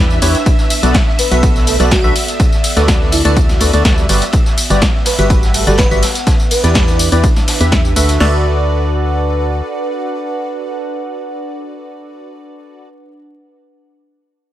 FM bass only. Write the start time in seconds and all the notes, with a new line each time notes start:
Already playing: E2
0.22 E2
0.83 B1
1.31 B1
1.80 B1
2.04 B1
2.77 D2
3.25 D2
3.61 D2
3.73 D2
3.85 D2
4.09 G1
4.70 G1
5.19 G1
5.67 G1
5.91 G1
6.64 E2
7.12 E2
7.60 E2
7.96 D2
8.20 D2